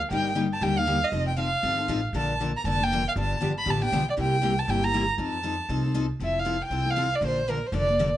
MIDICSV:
0, 0, Header, 1, 4, 480
1, 0, Start_track
1, 0, Tempo, 253485
1, 216, Time_signature, 4, 2, 24, 8
1, 15471, End_track
2, 0, Start_track
2, 0, Title_t, "Violin"
2, 0, Program_c, 0, 40
2, 223, Note_on_c, 0, 79, 90
2, 667, Note_off_c, 0, 79, 0
2, 1001, Note_on_c, 0, 81, 84
2, 1187, Note_on_c, 0, 79, 91
2, 1215, Note_off_c, 0, 81, 0
2, 1483, Note_on_c, 0, 77, 101
2, 1511, Note_off_c, 0, 79, 0
2, 1976, Note_on_c, 0, 75, 90
2, 2004, Note_off_c, 0, 77, 0
2, 2408, Note_off_c, 0, 75, 0
2, 2419, Note_on_c, 0, 79, 77
2, 2608, Note_off_c, 0, 79, 0
2, 2643, Note_on_c, 0, 77, 87
2, 3791, Note_off_c, 0, 77, 0
2, 4103, Note_on_c, 0, 81, 80
2, 4530, Note_off_c, 0, 81, 0
2, 4858, Note_on_c, 0, 82, 86
2, 5029, Note_off_c, 0, 82, 0
2, 5071, Note_on_c, 0, 81, 97
2, 5366, Note_on_c, 0, 79, 112
2, 5394, Note_off_c, 0, 81, 0
2, 5811, Note_off_c, 0, 79, 0
2, 5843, Note_on_c, 0, 77, 80
2, 5920, Note_off_c, 0, 77, 0
2, 6045, Note_on_c, 0, 81, 85
2, 6462, Note_off_c, 0, 81, 0
2, 6783, Note_on_c, 0, 83, 90
2, 7003, Note_on_c, 0, 81, 97
2, 7032, Note_off_c, 0, 83, 0
2, 7247, Note_off_c, 0, 81, 0
2, 7284, Note_on_c, 0, 79, 105
2, 7699, Note_off_c, 0, 79, 0
2, 7760, Note_on_c, 0, 74, 94
2, 7838, Note_off_c, 0, 74, 0
2, 7965, Note_on_c, 0, 79, 99
2, 8690, Note_on_c, 0, 81, 86
2, 8719, Note_off_c, 0, 79, 0
2, 8897, Note_on_c, 0, 79, 95
2, 8926, Note_off_c, 0, 81, 0
2, 9161, Note_on_c, 0, 82, 112
2, 9189, Note_off_c, 0, 79, 0
2, 9628, Note_off_c, 0, 82, 0
2, 9863, Note_on_c, 0, 81, 80
2, 11205, Note_off_c, 0, 81, 0
2, 11813, Note_on_c, 0, 76, 64
2, 12104, Note_on_c, 0, 77, 71
2, 12133, Note_off_c, 0, 76, 0
2, 12539, Note_off_c, 0, 77, 0
2, 12581, Note_on_c, 0, 79, 78
2, 13074, Note_on_c, 0, 77, 88
2, 13103, Note_off_c, 0, 79, 0
2, 13541, Note_on_c, 0, 74, 83
2, 13570, Note_off_c, 0, 77, 0
2, 13702, Note_off_c, 0, 74, 0
2, 13762, Note_on_c, 0, 72, 74
2, 14199, Note_on_c, 0, 70, 70
2, 14228, Note_off_c, 0, 72, 0
2, 14511, Note_on_c, 0, 72, 71
2, 14540, Note_off_c, 0, 70, 0
2, 14667, Note_off_c, 0, 72, 0
2, 14702, Note_on_c, 0, 74, 95
2, 15364, Note_off_c, 0, 74, 0
2, 15471, End_track
3, 0, Start_track
3, 0, Title_t, "Steel-string acoustic guitar"
3, 0, Program_c, 1, 25
3, 204, Note_on_c, 1, 50, 67
3, 219, Note_on_c, 1, 55, 68
3, 234, Note_on_c, 1, 58, 70
3, 234, Note_on_c, 1, 63, 70
3, 234, Note_on_c, 1, 67, 69
3, 556, Note_off_c, 1, 50, 0
3, 563, Note_off_c, 1, 55, 0
3, 571, Note_off_c, 1, 58, 0
3, 571, Note_off_c, 1, 63, 0
3, 571, Note_off_c, 1, 67, 0
3, 664, Note_on_c, 1, 50, 70
3, 668, Note_on_c, 1, 55, 79
3, 678, Note_on_c, 1, 63, 89
3, 679, Note_on_c, 1, 58, 85
3, 685, Note_on_c, 1, 67, 92
3, 876, Note_off_c, 1, 50, 0
3, 878, Note_off_c, 1, 55, 0
3, 884, Note_off_c, 1, 58, 0
3, 884, Note_off_c, 1, 63, 0
3, 887, Note_off_c, 1, 67, 0
3, 1163, Note_on_c, 1, 50, 71
3, 1165, Note_on_c, 1, 55, 72
3, 1167, Note_on_c, 1, 63, 76
3, 1174, Note_on_c, 1, 67, 81
3, 1176, Note_on_c, 1, 58, 71
3, 1424, Note_off_c, 1, 67, 0
3, 1435, Note_off_c, 1, 50, 0
3, 1436, Note_off_c, 1, 55, 0
3, 1436, Note_off_c, 1, 63, 0
3, 1441, Note_off_c, 1, 58, 0
3, 1447, Note_on_c, 1, 67, 54
3, 1467, Note_on_c, 1, 63, 51
3, 1487, Note_on_c, 1, 58, 43
3, 1626, Note_off_c, 1, 58, 0
3, 1630, Note_off_c, 1, 63, 0
3, 1632, Note_off_c, 1, 67, 0
3, 1633, Note_on_c, 1, 50, 79
3, 1635, Note_on_c, 1, 55, 92
3, 1648, Note_on_c, 1, 58, 88
3, 1653, Note_on_c, 1, 63, 92
3, 1655, Note_on_c, 1, 67, 99
3, 1842, Note_off_c, 1, 50, 0
3, 1842, Note_off_c, 1, 55, 0
3, 1849, Note_off_c, 1, 58, 0
3, 1851, Note_off_c, 1, 63, 0
3, 1853, Note_off_c, 1, 67, 0
3, 2121, Note_on_c, 1, 60, 64
3, 2125, Note_on_c, 1, 53, 60
3, 2133, Note_on_c, 1, 63, 66
3, 2148, Note_on_c, 1, 69, 72
3, 2476, Note_off_c, 1, 60, 0
3, 2478, Note_off_c, 1, 53, 0
3, 2482, Note_off_c, 1, 63, 0
3, 2489, Note_off_c, 1, 69, 0
3, 2586, Note_on_c, 1, 60, 88
3, 2596, Note_on_c, 1, 53, 76
3, 2607, Note_on_c, 1, 63, 78
3, 2609, Note_on_c, 1, 69, 72
3, 2799, Note_off_c, 1, 60, 0
3, 2803, Note_off_c, 1, 53, 0
3, 2809, Note_off_c, 1, 63, 0
3, 2810, Note_off_c, 1, 69, 0
3, 3080, Note_on_c, 1, 53, 64
3, 3086, Note_on_c, 1, 60, 71
3, 3089, Note_on_c, 1, 63, 63
3, 3098, Note_on_c, 1, 69, 77
3, 3336, Note_off_c, 1, 69, 0
3, 3354, Note_off_c, 1, 53, 0
3, 3357, Note_off_c, 1, 60, 0
3, 3358, Note_off_c, 1, 63, 0
3, 3359, Note_on_c, 1, 69, 61
3, 3383, Note_on_c, 1, 63, 47
3, 3403, Note_on_c, 1, 60, 44
3, 3554, Note_off_c, 1, 63, 0
3, 3563, Note_off_c, 1, 60, 0
3, 3564, Note_off_c, 1, 69, 0
3, 3565, Note_on_c, 1, 53, 98
3, 3576, Note_on_c, 1, 63, 92
3, 3586, Note_on_c, 1, 60, 85
3, 3586, Note_on_c, 1, 69, 100
3, 3768, Note_off_c, 1, 53, 0
3, 3774, Note_off_c, 1, 63, 0
3, 3778, Note_off_c, 1, 60, 0
3, 3779, Note_off_c, 1, 69, 0
3, 4052, Note_on_c, 1, 50, 57
3, 4060, Note_on_c, 1, 53, 63
3, 4061, Note_on_c, 1, 58, 65
3, 4066, Note_on_c, 1, 69, 77
3, 4075, Note_on_c, 1, 62, 70
3, 4402, Note_off_c, 1, 50, 0
3, 4406, Note_off_c, 1, 53, 0
3, 4406, Note_off_c, 1, 58, 0
3, 4409, Note_off_c, 1, 69, 0
3, 4413, Note_off_c, 1, 62, 0
3, 4548, Note_on_c, 1, 50, 67
3, 4550, Note_on_c, 1, 53, 82
3, 4560, Note_on_c, 1, 58, 88
3, 4571, Note_on_c, 1, 69, 73
3, 4574, Note_on_c, 1, 62, 93
3, 4740, Note_off_c, 1, 50, 0
3, 4741, Note_off_c, 1, 53, 0
3, 4746, Note_off_c, 1, 58, 0
3, 4752, Note_off_c, 1, 69, 0
3, 4753, Note_off_c, 1, 62, 0
3, 5014, Note_on_c, 1, 53, 67
3, 5022, Note_on_c, 1, 50, 62
3, 5039, Note_on_c, 1, 58, 67
3, 5040, Note_on_c, 1, 62, 81
3, 5046, Note_on_c, 1, 69, 66
3, 5279, Note_off_c, 1, 69, 0
3, 5282, Note_off_c, 1, 53, 0
3, 5286, Note_off_c, 1, 50, 0
3, 5287, Note_off_c, 1, 62, 0
3, 5294, Note_off_c, 1, 58, 0
3, 5302, Note_on_c, 1, 69, 62
3, 5309, Note_on_c, 1, 62, 50
3, 5334, Note_on_c, 1, 58, 45
3, 5496, Note_off_c, 1, 69, 0
3, 5500, Note_off_c, 1, 62, 0
3, 5512, Note_off_c, 1, 58, 0
3, 5529, Note_on_c, 1, 50, 89
3, 5541, Note_on_c, 1, 53, 93
3, 5547, Note_on_c, 1, 58, 95
3, 5550, Note_on_c, 1, 69, 103
3, 5559, Note_on_c, 1, 62, 99
3, 5711, Note_off_c, 1, 50, 0
3, 5717, Note_off_c, 1, 53, 0
3, 5720, Note_off_c, 1, 58, 0
3, 5721, Note_off_c, 1, 69, 0
3, 5726, Note_off_c, 1, 62, 0
3, 5986, Note_on_c, 1, 50, 62
3, 6000, Note_on_c, 1, 53, 72
3, 6000, Note_on_c, 1, 59, 66
3, 6000, Note_on_c, 1, 62, 67
3, 6014, Note_on_c, 1, 67, 63
3, 6329, Note_off_c, 1, 50, 0
3, 6336, Note_off_c, 1, 53, 0
3, 6336, Note_off_c, 1, 59, 0
3, 6336, Note_off_c, 1, 62, 0
3, 6343, Note_off_c, 1, 67, 0
3, 6449, Note_on_c, 1, 50, 78
3, 6455, Note_on_c, 1, 53, 72
3, 6466, Note_on_c, 1, 62, 84
3, 6472, Note_on_c, 1, 59, 82
3, 6473, Note_on_c, 1, 67, 92
3, 6651, Note_off_c, 1, 50, 0
3, 6654, Note_off_c, 1, 53, 0
3, 6659, Note_off_c, 1, 62, 0
3, 6662, Note_off_c, 1, 59, 0
3, 6663, Note_off_c, 1, 67, 0
3, 6919, Note_on_c, 1, 50, 72
3, 6932, Note_on_c, 1, 53, 68
3, 6942, Note_on_c, 1, 59, 84
3, 6949, Note_on_c, 1, 62, 69
3, 6956, Note_on_c, 1, 67, 79
3, 7194, Note_off_c, 1, 50, 0
3, 7198, Note_off_c, 1, 67, 0
3, 7201, Note_off_c, 1, 53, 0
3, 7206, Note_off_c, 1, 59, 0
3, 7209, Note_off_c, 1, 62, 0
3, 7221, Note_on_c, 1, 67, 56
3, 7250, Note_on_c, 1, 62, 52
3, 7264, Note_on_c, 1, 59, 51
3, 7416, Note_off_c, 1, 67, 0
3, 7424, Note_off_c, 1, 59, 0
3, 7426, Note_off_c, 1, 62, 0
3, 7430, Note_on_c, 1, 50, 92
3, 7440, Note_on_c, 1, 53, 100
3, 7447, Note_on_c, 1, 59, 111
3, 7447, Note_on_c, 1, 67, 95
3, 7449, Note_on_c, 1, 62, 104
3, 7621, Note_off_c, 1, 50, 0
3, 7626, Note_off_c, 1, 53, 0
3, 7630, Note_off_c, 1, 59, 0
3, 7630, Note_off_c, 1, 67, 0
3, 7631, Note_off_c, 1, 62, 0
3, 7892, Note_on_c, 1, 48, 61
3, 7901, Note_on_c, 1, 55, 63
3, 7906, Note_on_c, 1, 64, 74
3, 7906, Note_on_c, 1, 67, 75
3, 7912, Note_on_c, 1, 58, 70
3, 8242, Note_off_c, 1, 48, 0
3, 8246, Note_off_c, 1, 55, 0
3, 8249, Note_off_c, 1, 64, 0
3, 8249, Note_off_c, 1, 67, 0
3, 8252, Note_off_c, 1, 58, 0
3, 8364, Note_on_c, 1, 48, 86
3, 8380, Note_on_c, 1, 55, 70
3, 8387, Note_on_c, 1, 58, 81
3, 8393, Note_on_c, 1, 64, 99
3, 8403, Note_on_c, 1, 67, 90
3, 8568, Note_off_c, 1, 48, 0
3, 8576, Note_off_c, 1, 55, 0
3, 8579, Note_off_c, 1, 58, 0
3, 8583, Note_off_c, 1, 64, 0
3, 8587, Note_off_c, 1, 67, 0
3, 8867, Note_on_c, 1, 48, 71
3, 8875, Note_on_c, 1, 55, 68
3, 8877, Note_on_c, 1, 58, 76
3, 8884, Note_on_c, 1, 67, 80
3, 8894, Note_on_c, 1, 64, 77
3, 9126, Note_off_c, 1, 67, 0
3, 9128, Note_off_c, 1, 48, 0
3, 9132, Note_off_c, 1, 55, 0
3, 9133, Note_off_c, 1, 58, 0
3, 9141, Note_off_c, 1, 64, 0
3, 9149, Note_on_c, 1, 67, 57
3, 9166, Note_on_c, 1, 64, 51
3, 9172, Note_on_c, 1, 58, 50
3, 9325, Note_off_c, 1, 58, 0
3, 9339, Note_off_c, 1, 67, 0
3, 9342, Note_off_c, 1, 64, 0
3, 9348, Note_on_c, 1, 58, 97
3, 9354, Note_on_c, 1, 48, 87
3, 9354, Note_on_c, 1, 55, 97
3, 9364, Note_on_c, 1, 64, 106
3, 9375, Note_on_c, 1, 67, 98
3, 9540, Note_off_c, 1, 58, 0
3, 9543, Note_off_c, 1, 48, 0
3, 9543, Note_off_c, 1, 55, 0
3, 9548, Note_off_c, 1, 64, 0
3, 9553, Note_off_c, 1, 67, 0
3, 9808, Note_on_c, 1, 53, 67
3, 9824, Note_on_c, 1, 63, 65
3, 9826, Note_on_c, 1, 60, 61
3, 9837, Note_on_c, 1, 69, 75
3, 10159, Note_off_c, 1, 53, 0
3, 10167, Note_off_c, 1, 63, 0
3, 10168, Note_off_c, 1, 60, 0
3, 10173, Note_off_c, 1, 69, 0
3, 10288, Note_on_c, 1, 53, 76
3, 10294, Note_on_c, 1, 60, 78
3, 10303, Note_on_c, 1, 69, 82
3, 10304, Note_on_c, 1, 63, 91
3, 10489, Note_off_c, 1, 53, 0
3, 10492, Note_off_c, 1, 60, 0
3, 10497, Note_off_c, 1, 63, 0
3, 10497, Note_off_c, 1, 69, 0
3, 10783, Note_on_c, 1, 53, 68
3, 10787, Note_on_c, 1, 60, 72
3, 10794, Note_on_c, 1, 63, 62
3, 10797, Note_on_c, 1, 69, 83
3, 11039, Note_off_c, 1, 69, 0
3, 11045, Note_off_c, 1, 53, 0
3, 11047, Note_off_c, 1, 60, 0
3, 11050, Note_off_c, 1, 63, 0
3, 11061, Note_on_c, 1, 69, 52
3, 11075, Note_on_c, 1, 63, 47
3, 11103, Note_on_c, 1, 60, 43
3, 11241, Note_off_c, 1, 60, 0
3, 11241, Note_off_c, 1, 69, 0
3, 11248, Note_off_c, 1, 63, 0
3, 11255, Note_on_c, 1, 53, 93
3, 11264, Note_on_c, 1, 60, 92
3, 11264, Note_on_c, 1, 69, 110
3, 11271, Note_on_c, 1, 63, 95
3, 11453, Note_off_c, 1, 53, 0
3, 11457, Note_off_c, 1, 60, 0
3, 11457, Note_off_c, 1, 69, 0
3, 11460, Note_off_c, 1, 63, 0
3, 11747, Note_on_c, 1, 60, 63
3, 11748, Note_on_c, 1, 53, 57
3, 11764, Note_on_c, 1, 69, 64
3, 11766, Note_on_c, 1, 64, 66
3, 12088, Note_off_c, 1, 60, 0
3, 12089, Note_off_c, 1, 53, 0
3, 12096, Note_off_c, 1, 69, 0
3, 12097, Note_off_c, 1, 64, 0
3, 12210, Note_on_c, 1, 53, 75
3, 12214, Note_on_c, 1, 60, 69
3, 12215, Note_on_c, 1, 64, 77
3, 12228, Note_on_c, 1, 69, 95
3, 12410, Note_off_c, 1, 53, 0
3, 12411, Note_off_c, 1, 60, 0
3, 12412, Note_off_c, 1, 64, 0
3, 12418, Note_off_c, 1, 69, 0
3, 12703, Note_on_c, 1, 60, 68
3, 12704, Note_on_c, 1, 53, 58
3, 12727, Note_on_c, 1, 69, 72
3, 12732, Note_on_c, 1, 64, 69
3, 12963, Note_off_c, 1, 69, 0
3, 12964, Note_off_c, 1, 60, 0
3, 12965, Note_off_c, 1, 53, 0
3, 12971, Note_off_c, 1, 64, 0
3, 12985, Note_on_c, 1, 69, 45
3, 12994, Note_on_c, 1, 64, 46
3, 13017, Note_on_c, 1, 60, 41
3, 13168, Note_off_c, 1, 60, 0
3, 13169, Note_off_c, 1, 64, 0
3, 13176, Note_off_c, 1, 69, 0
3, 13182, Note_on_c, 1, 53, 83
3, 13191, Note_on_c, 1, 60, 84
3, 13192, Note_on_c, 1, 64, 93
3, 13214, Note_on_c, 1, 69, 98
3, 13375, Note_off_c, 1, 53, 0
3, 13380, Note_off_c, 1, 60, 0
3, 13380, Note_off_c, 1, 64, 0
3, 13392, Note_off_c, 1, 69, 0
3, 13662, Note_on_c, 1, 50, 56
3, 13667, Note_on_c, 1, 53, 66
3, 13673, Note_on_c, 1, 62, 66
3, 13677, Note_on_c, 1, 58, 56
3, 13683, Note_on_c, 1, 69, 61
3, 14005, Note_off_c, 1, 50, 0
3, 14007, Note_off_c, 1, 53, 0
3, 14010, Note_off_c, 1, 62, 0
3, 14012, Note_off_c, 1, 58, 0
3, 14015, Note_off_c, 1, 69, 0
3, 14159, Note_on_c, 1, 53, 76
3, 14161, Note_on_c, 1, 50, 78
3, 14170, Note_on_c, 1, 62, 78
3, 14174, Note_on_c, 1, 58, 68
3, 14183, Note_on_c, 1, 69, 83
3, 14344, Note_off_c, 1, 50, 0
3, 14344, Note_off_c, 1, 53, 0
3, 14349, Note_off_c, 1, 62, 0
3, 14351, Note_off_c, 1, 58, 0
3, 14355, Note_off_c, 1, 69, 0
3, 14622, Note_on_c, 1, 50, 60
3, 14627, Note_on_c, 1, 53, 69
3, 14635, Note_on_c, 1, 58, 68
3, 14644, Note_on_c, 1, 62, 77
3, 14647, Note_on_c, 1, 69, 76
3, 14880, Note_off_c, 1, 69, 0
3, 14883, Note_off_c, 1, 50, 0
3, 14886, Note_off_c, 1, 53, 0
3, 14890, Note_off_c, 1, 58, 0
3, 14894, Note_off_c, 1, 62, 0
3, 14903, Note_on_c, 1, 69, 49
3, 14923, Note_on_c, 1, 62, 42
3, 14934, Note_on_c, 1, 58, 45
3, 15094, Note_off_c, 1, 69, 0
3, 15104, Note_off_c, 1, 62, 0
3, 15110, Note_off_c, 1, 58, 0
3, 15134, Note_on_c, 1, 50, 79
3, 15140, Note_on_c, 1, 53, 78
3, 15143, Note_on_c, 1, 69, 109
3, 15149, Note_on_c, 1, 62, 101
3, 15153, Note_on_c, 1, 58, 99
3, 15311, Note_off_c, 1, 50, 0
3, 15314, Note_off_c, 1, 53, 0
3, 15315, Note_off_c, 1, 69, 0
3, 15318, Note_off_c, 1, 62, 0
3, 15320, Note_off_c, 1, 58, 0
3, 15471, End_track
4, 0, Start_track
4, 0, Title_t, "Upright bass"
4, 0, Program_c, 2, 32
4, 203, Note_on_c, 2, 31, 81
4, 978, Note_off_c, 2, 31, 0
4, 1160, Note_on_c, 2, 39, 92
4, 1936, Note_off_c, 2, 39, 0
4, 2120, Note_on_c, 2, 29, 79
4, 2897, Note_off_c, 2, 29, 0
4, 3089, Note_on_c, 2, 31, 75
4, 3502, Note_off_c, 2, 31, 0
4, 3564, Note_on_c, 2, 33, 75
4, 3979, Note_off_c, 2, 33, 0
4, 4032, Note_on_c, 2, 34, 80
4, 4812, Note_off_c, 2, 34, 0
4, 5002, Note_on_c, 2, 29, 73
4, 5778, Note_off_c, 2, 29, 0
4, 5980, Note_on_c, 2, 31, 88
4, 6364, Note_off_c, 2, 31, 0
4, 6469, Note_on_c, 2, 31, 72
4, 6874, Note_off_c, 2, 31, 0
4, 6935, Note_on_c, 2, 33, 82
4, 7346, Note_off_c, 2, 33, 0
4, 7423, Note_on_c, 2, 35, 74
4, 7830, Note_off_c, 2, 35, 0
4, 7904, Note_on_c, 2, 36, 74
4, 8670, Note_off_c, 2, 36, 0
4, 8859, Note_on_c, 2, 31, 91
4, 9627, Note_off_c, 2, 31, 0
4, 9810, Note_on_c, 2, 41, 86
4, 10582, Note_off_c, 2, 41, 0
4, 10769, Note_on_c, 2, 36, 84
4, 11541, Note_off_c, 2, 36, 0
4, 11733, Note_on_c, 2, 29, 69
4, 12503, Note_off_c, 2, 29, 0
4, 12691, Note_on_c, 2, 36, 69
4, 13461, Note_off_c, 2, 36, 0
4, 13651, Note_on_c, 2, 34, 82
4, 14421, Note_off_c, 2, 34, 0
4, 14619, Note_on_c, 2, 29, 82
4, 15386, Note_off_c, 2, 29, 0
4, 15471, End_track
0, 0, End_of_file